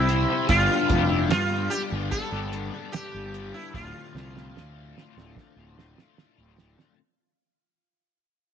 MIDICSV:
0, 0, Header, 1, 6, 480
1, 0, Start_track
1, 0, Tempo, 811908
1, 294, Time_signature, 4, 2, 24, 8
1, 5043, End_track
2, 0, Start_track
2, 0, Title_t, "Tonewheel organ"
2, 0, Program_c, 0, 16
2, 0, Note_on_c, 0, 72, 66
2, 0, Note_on_c, 0, 76, 58
2, 0, Note_on_c, 0, 79, 65
2, 0, Note_on_c, 0, 83, 67
2, 282, Note_off_c, 0, 72, 0
2, 282, Note_off_c, 0, 76, 0
2, 287, Note_on_c, 0, 77, 56
2, 288, Note_on_c, 0, 74, 65
2, 2191, Note_off_c, 0, 79, 0
2, 2193, Note_off_c, 0, 83, 0
2, 2221, Note_on_c, 0, 81, 61
2, 2225, Note_on_c, 0, 84, 65
2, 4107, Note_off_c, 0, 74, 0
2, 4107, Note_off_c, 0, 77, 0
2, 4117, Note_off_c, 0, 81, 0
2, 4120, Note_off_c, 0, 84, 0
2, 5043, End_track
3, 0, Start_track
3, 0, Title_t, "Sitar"
3, 0, Program_c, 1, 104
3, 0, Note_on_c, 1, 64, 86
3, 288, Note_off_c, 1, 64, 0
3, 290, Note_on_c, 1, 65, 87
3, 633, Note_off_c, 1, 65, 0
3, 633, Note_on_c, 1, 64, 87
3, 764, Note_off_c, 1, 64, 0
3, 771, Note_on_c, 1, 65, 92
3, 1005, Note_on_c, 1, 67, 100
3, 1020, Note_off_c, 1, 65, 0
3, 1071, Note_off_c, 1, 67, 0
3, 1249, Note_on_c, 1, 69, 86
3, 1725, Note_off_c, 1, 69, 0
3, 1728, Note_on_c, 1, 67, 89
3, 2093, Note_on_c, 1, 64, 71
3, 2102, Note_off_c, 1, 67, 0
3, 2213, Note_off_c, 1, 64, 0
3, 2215, Note_on_c, 1, 65, 80
3, 3631, Note_off_c, 1, 65, 0
3, 5043, End_track
4, 0, Start_track
4, 0, Title_t, "Overdriven electric guitar"
4, 0, Program_c, 2, 29
4, 0, Note_on_c, 2, 48, 76
4, 0, Note_on_c, 2, 55, 84
4, 45, Note_on_c, 2, 60, 67
4, 52, Note_on_c, 2, 64, 81
4, 53, Note_on_c, 2, 67, 86
4, 59, Note_on_c, 2, 72, 77
4, 166, Note_off_c, 2, 48, 0
4, 170, Note_off_c, 2, 55, 0
4, 275, Note_off_c, 2, 60, 0
4, 279, Note_off_c, 2, 64, 0
4, 279, Note_off_c, 2, 67, 0
4, 282, Note_off_c, 2, 72, 0
4, 284, Note_on_c, 2, 43, 86
4, 287, Note_on_c, 2, 50, 87
4, 291, Note_on_c, 2, 55, 97
4, 293, Note_on_c, 2, 59, 93
4, 296, Note_on_c, 2, 62, 100
4, 298, Note_on_c, 2, 67, 95
4, 522, Note_off_c, 2, 55, 0
4, 529, Note_off_c, 2, 59, 0
4, 529, Note_on_c, 2, 55, 71
4, 536, Note_off_c, 2, 67, 0
4, 536, Note_on_c, 2, 59, 72
4, 537, Note_off_c, 2, 62, 0
4, 540, Note_on_c, 2, 62, 72
4, 543, Note_on_c, 2, 67, 74
4, 637, Note_off_c, 2, 67, 0
4, 644, Note_on_c, 2, 67, 80
4, 646, Note_off_c, 2, 62, 0
4, 648, Note_off_c, 2, 59, 0
4, 648, Note_on_c, 2, 62, 72
4, 654, Note_off_c, 2, 55, 0
4, 655, Note_on_c, 2, 59, 66
4, 661, Note_on_c, 2, 55, 59
4, 756, Note_off_c, 2, 43, 0
4, 758, Note_off_c, 2, 50, 0
4, 760, Note_off_c, 2, 55, 0
4, 763, Note_on_c, 2, 43, 93
4, 764, Note_off_c, 2, 59, 0
4, 765, Note_on_c, 2, 50, 91
4, 767, Note_on_c, 2, 55, 93
4, 768, Note_off_c, 2, 67, 0
4, 770, Note_off_c, 2, 62, 0
4, 771, Note_on_c, 2, 59, 97
4, 772, Note_on_c, 2, 62, 89
4, 775, Note_on_c, 2, 67, 104
4, 999, Note_off_c, 2, 55, 0
4, 1005, Note_off_c, 2, 59, 0
4, 1006, Note_on_c, 2, 55, 62
4, 1012, Note_off_c, 2, 67, 0
4, 1012, Note_on_c, 2, 59, 63
4, 1013, Note_off_c, 2, 62, 0
4, 1016, Note_on_c, 2, 62, 69
4, 1019, Note_on_c, 2, 67, 74
4, 1124, Note_off_c, 2, 67, 0
4, 1131, Note_on_c, 2, 67, 67
4, 1136, Note_off_c, 2, 59, 0
4, 1139, Note_off_c, 2, 62, 0
4, 1140, Note_off_c, 2, 55, 0
4, 1141, Note_on_c, 2, 62, 65
4, 1143, Note_on_c, 2, 59, 59
4, 1147, Note_on_c, 2, 55, 55
4, 1249, Note_off_c, 2, 43, 0
4, 1250, Note_off_c, 2, 50, 0
4, 1362, Note_off_c, 2, 67, 0
4, 1369, Note_on_c, 2, 67, 69
4, 1374, Note_off_c, 2, 59, 0
4, 1375, Note_off_c, 2, 62, 0
4, 1378, Note_on_c, 2, 62, 65
4, 1381, Note_off_c, 2, 55, 0
4, 1381, Note_on_c, 2, 59, 69
4, 1388, Note_on_c, 2, 55, 58
4, 1491, Note_off_c, 2, 55, 0
4, 1498, Note_on_c, 2, 55, 72
4, 1499, Note_off_c, 2, 59, 0
4, 1506, Note_on_c, 2, 59, 64
4, 1507, Note_off_c, 2, 67, 0
4, 1509, Note_off_c, 2, 62, 0
4, 1511, Note_on_c, 2, 62, 77
4, 1514, Note_on_c, 2, 67, 73
4, 1604, Note_off_c, 2, 67, 0
4, 1612, Note_off_c, 2, 59, 0
4, 1612, Note_on_c, 2, 67, 74
4, 1614, Note_off_c, 2, 62, 0
4, 1616, Note_on_c, 2, 62, 68
4, 1617, Note_off_c, 2, 55, 0
4, 1619, Note_on_c, 2, 59, 67
4, 1624, Note_on_c, 2, 55, 64
4, 1733, Note_off_c, 2, 55, 0
4, 1734, Note_off_c, 2, 59, 0
4, 1734, Note_on_c, 2, 43, 92
4, 1734, Note_on_c, 2, 50, 79
4, 1739, Note_off_c, 2, 67, 0
4, 1740, Note_on_c, 2, 55, 92
4, 1741, Note_on_c, 2, 59, 100
4, 1744, Note_off_c, 2, 62, 0
4, 1746, Note_on_c, 2, 62, 103
4, 1746, Note_on_c, 2, 67, 95
4, 1843, Note_off_c, 2, 67, 0
4, 1850, Note_on_c, 2, 67, 64
4, 1855, Note_off_c, 2, 59, 0
4, 1855, Note_off_c, 2, 62, 0
4, 1857, Note_on_c, 2, 62, 63
4, 1860, Note_off_c, 2, 55, 0
4, 1862, Note_on_c, 2, 59, 62
4, 1867, Note_on_c, 2, 55, 54
4, 1962, Note_off_c, 2, 55, 0
4, 1969, Note_on_c, 2, 55, 83
4, 1971, Note_off_c, 2, 59, 0
4, 1977, Note_off_c, 2, 67, 0
4, 1978, Note_off_c, 2, 62, 0
4, 1978, Note_on_c, 2, 59, 83
4, 1980, Note_on_c, 2, 62, 80
4, 1984, Note_on_c, 2, 67, 87
4, 2095, Note_off_c, 2, 43, 0
4, 2095, Note_off_c, 2, 50, 0
4, 2198, Note_off_c, 2, 55, 0
4, 2202, Note_off_c, 2, 59, 0
4, 2205, Note_off_c, 2, 67, 0
4, 2206, Note_on_c, 2, 38, 96
4, 2211, Note_on_c, 2, 45, 88
4, 2215, Note_on_c, 2, 50, 96
4, 2217, Note_off_c, 2, 62, 0
4, 2218, Note_on_c, 2, 57, 97
4, 2219, Note_on_c, 2, 65, 88
4, 2220, Note_on_c, 2, 60, 98
4, 2438, Note_off_c, 2, 50, 0
4, 2445, Note_on_c, 2, 50, 76
4, 2449, Note_off_c, 2, 57, 0
4, 2449, Note_off_c, 2, 60, 0
4, 2456, Note_on_c, 2, 57, 66
4, 2456, Note_on_c, 2, 60, 70
4, 2457, Note_off_c, 2, 65, 0
4, 2464, Note_on_c, 2, 65, 79
4, 2564, Note_off_c, 2, 65, 0
4, 2568, Note_off_c, 2, 60, 0
4, 2571, Note_on_c, 2, 65, 81
4, 2574, Note_off_c, 2, 57, 0
4, 2575, Note_on_c, 2, 60, 61
4, 2578, Note_off_c, 2, 50, 0
4, 2581, Note_on_c, 2, 57, 60
4, 2585, Note_on_c, 2, 50, 59
4, 2682, Note_off_c, 2, 38, 0
4, 2686, Note_off_c, 2, 45, 0
4, 2687, Note_off_c, 2, 50, 0
4, 2689, Note_on_c, 2, 38, 85
4, 2690, Note_off_c, 2, 60, 0
4, 2692, Note_off_c, 2, 57, 0
4, 2694, Note_off_c, 2, 65, 0
4, 2694, Note_on_c, 2, 45, 92
4, 2695, Note_on_c, 2, 50, 88
4, 2697, Note_on_c, 2, 60, 98
4, 2699, Note_on_c, 2, 57, 92
4, 2701, Note_on_c, 2, 65, 88
4, 2920, Note_off_c, 2, 50, 0
4, 2927, Note_on_c, 2, 50, 63
4, 2929, Note_off_c, 2, 57, 0
4, 2932, Note_off_c, 2, 60, 0
4, 2935, Note_off_c, 2, 65, 0
4, 2936, Note_on_c, 2, 57, 68
4, 2940, Note_on_c, 2, 60, 73
4, 2943, Note_on_c, 2, 65, 71
4, 3039, Note_off_c, 2, 65, 0
4, 3046, Note_on_c, 2, 65, 68
4, 3048, Note_off_c, 2, 60, 0
4, 3054, Note_off_c, 2, 50, 0
4, 3054, Note_off_c, 2, 57, 0
4, 3055, Note_on_c, 2, 60, 60
4, 3062, Note_on_c, 2, 50, 63
4, 3062, Note_on_c, 2, 57, 64
4, 3172, Note_off_c, 2, 38, 0
4, 3174, Note_off_c, 2, 45, 0
4, 3282, Note_off_c, 2, 65, 0
4, 3286, Note_off_c, 2, 60, 0
4, 3289, Note_on_c, 2, 65, 68
4, 3291, Note_off_c, 2, 57, 0
4, 3293, Note_on_c, 2, 60, 71
4, 3297, Note_off_c, 2, 50, 0
4, 3298, Note_on_c, 2, 57, 63
4, 3304, Note_on_c, 2, 50, 53
4, 3401, Note_off_c, 2, 50, 0
4, 3404, Note_off_c, 2, 57, 0
4, 3408, Note_on_c, 2, 50, 68
4, 3409, Note_off_c, 2, 60, 0
4, 3411, Note_on_c, 2, 57, 73
4, 3413, Note_off_c, 2, 65, 0
4, 3417, Note_on_c, 2, 60, 77
4, 3420, Note_on_c, 2, 65, 81
4, 3526, Note_off_c, 2, 65, 0
4, 3531, Note_off_c, 2, 60, 0
4, 3533, Note_on_c, 2, 65, 73
4, 3537, Note_off_c, 2, 57, 0
4, 3538, Note_on_c, 2, 60, 74
4, 3540, Note_off_c, 2, 50, 0
4, 3544, Note_on_c, 2, 57, 69
4, 3547, Note_on_c, 2, 50, 63
4, 3648, Note_on_c, 2, 38, 90
4, 3650, Note_off_c, 2, 50, 0
4, 3651, Note_off_c, 2, 57, 0
4, 3651, Note_on_c, 2, 45, 92
4, 3652, Note_off_c, 2, 60, 0
4, 3656, Note_off_c, 2, 65, 0
4, 3657, Note_on_c, 2, 50, 90
4, 3658, Note_on_c, 2, 57, 91
4, 3659, Note_on_c, 2, 60, 86
4, 3663, Note_on_c, 2, 65, 97
4, 3761, Note_off_c, 2, 65, 0
4, 3768, Note_off_c, 2, 60, 0
4, 3768, Note_on_c, 2, 65, 63
4, 3772, Note_off_c, 2, 57, 0
4, 3776, Note_on_c, 2, 60, 68
4, 3778, Note_off_c, 2, 50, 0
4, 3779, Note_on_c, 2, 57, 66
4, 3785, Note_on_c, 2, 50, 55
4, 3879, Note_off_c, 2, 50, 0
4, 3882, Note_off_c, 2, 57, 0
4, 3886, Note_on_c, 2, 50, 77
4, 3888, Note_off_c, 2, 60, 0
4, 3890, Note_on_c, 2, 57, 80
4, 3893, Note_off_c, 2, 65, 0
4, 3896, Note_on_c, 2, 60, 87
4, 3900, Note_on_c, 2, 65, 84
4, 4011, Note_off_c, 2, 38, 0
4, 4012, Note_off_c, 2, 45, 0
4, 4115, Note_off_c, 2, 50, 0
4, 4117, Note_off_c, 2, 57, 0
4, 4120, Note_off_c, 2, 60, 0
4, 4122, Note_off_c, 2, 65, 0
4, 5043, End_track
5, 0, Start_track
5, 0, Title_t, "Fingered electric bass"
5, 0, Program_c, 3, 33
5, 0, Note_on_c, 3, 36, 75
5, 148, Note_off_c, 3, 36, 0
5, 291, Note_on_c, 3, 31, 99
5, 402, Note_off_c, 3, 31, 0
5, 532, Note_on_c, 3, 29, 108
5, 753, Note_off_c, 3, 29, 0
5, 765, Note_on_c, 3, 43, 91
5, 989, Note_off_c, 3, 43, 0
5, 1135, Note_on_c, 3, 31, 98
5, 1245, Note_off_c, 3, 31, 0
5, 1372, Note_on_c, 3, 31, 90
5, 1593, Note_off_c, 3, 31, 0
5, 1857, Note_on_c, 3, 31, 77
5, 2076, Note_off_c, 3, 31, 0
5, 2212, Note_on_c, 3, 26, 83
5, 2323, Note_off_c, 3, 26, 0
5, 2451, Note_on_c, 3, 36, 99
5, 2672, Note_off_c, 3, 36, 0
5, 2695, Note_on_c, 3, 38, 91
5, 2914, Note_off_c, 3, 38, 0
5, 3054, Note_on_c, 3, 26, 82
5, 3164, Note_off_c, 3, 26, 0
5, 3289, Note_on_c, 3, 26, 78
5, 3511, Note_off_c, 3, 26, 0
5, 3773, Note_on_c, 3, 26, 80
5, 3992, Note_off_c, 3, 26, 0
5, 5043, End_track
6, 0, Start_track
6, 0, Title_t, "Drums"
6, 52, Note_on_c, 9, 42, 61
6, 111, Note_off_c, 9, 42, 0
6, 288, Note_on_c, 9, 42, 95
6, 291, Note_on_c, 9, 36, 102
6, 347, Note_off_c, 9, 42, 0
6, 350, Note_off_c, 9, 36, 0
6, 529, Note_on_c, 9, 42, 67
6, 532, Note_on_c, 9, 36, 77
6, 588, Note_off_c, 9, 42, 0
6, 591, Note_off_c, 9, 36, 0
6, 772, Note_on_c, 9, 42, 95
6, 779, Note_on_c, 9, 38, 117
6, 831, Note_off_c, 9, 42, 0
6, 838, Note_off_c, 9, 38, 0
6, 1011, Note_on_c, 9, 42, 71
6, 1070, Note_off_c, 9, 42, 0
6, 1253, Note_on_c, 9, 42, 93
6, 1254, Note_on_c, 9, 36, 112
6, 1312, Note_off_c, 9, 42, 0
6, 1313, Note_off_c, 9, 36, 0
6, 1495, Note_on_c, 9, 42, 68
6, 1554, Note_off_c, 9, 42, 0
6, 1733, Note_on_c, 9, 42, 88
6, 1740, Note_on_c, 9, 38, 109
6, 1792, Note_off_c, 9, 42, 0
6, 1799, Note_off_c, 9, 38, 0
6, 1975, Note_on_c, 9, 42, 63
6, 2035, Note_off_c, 9, 42, 0
6, 2213, Note_on_c, 9, 36, 109
6, 2219, Note_on_c, 9, 38, 55
6, 2272, Note_off_c, 9, 36, 0
6, 2278, Note_off_c, 9, 38, 0
6, 2461, Note_on_c, 9, 38, 57
6, 2520, Note_off_c, 9, 38, 0
6, 2583, Note_on_c, 9, 38, 57
6, 2642, Note_off_c, 9, 38, 0
6, 2702, Note_on_c, 9, 38, 73
6, 2761, Note_off_c, 9, 38, 0
6, 2943, Note_on_c, 9, 38, 71
6, 3002, Note_off_c, 9, 38, 0
6, 3061, Note_on_c, 9, 38, 65
6, 3120, Note_off_c, 9, 38, 0
6, 3172, Note_on_c, 9, 36, 117
6, 3178, Note_on_c, 9, 38, 80
6, 3231, Note_off_c, 9, 36, 0
6, 3237, Note_off_c, 9, 38, 0
6, 3421, Note_on_c, 9, 38, 83
6, 3480, Note_off_c, 9, 38, 0
6, 3537, Note_on_c, 9, 38, 79
6, 3596, Note_off_c, 9, 38, 0
6, 3655, Note_on_c, 9, 38, 92
6, 3714, Note_off_c, 9, 38, 0
6, 3892, Note_on_c, 9, 38, 92
6, 3951, Note_off_c, 9, 38, 0
6, 4014, Note_on_c, 9, 38, 81
6, 4073, Note_off_c, 9, 38, 0
6, 5043, End_track
0, 0, End_of_file